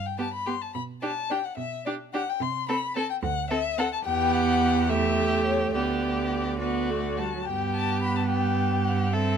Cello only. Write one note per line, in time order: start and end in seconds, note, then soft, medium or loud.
0.00 0.58 G2 soft
0.75 1.42 B2 soft
1.57 2.24 B2 soft
2.40 3.07 C3 medium
3.23 3.89 D2 medium
4.06 5.71 E2 medium
5.74 7.23 D2 soft
7.46 9.37 G2 soft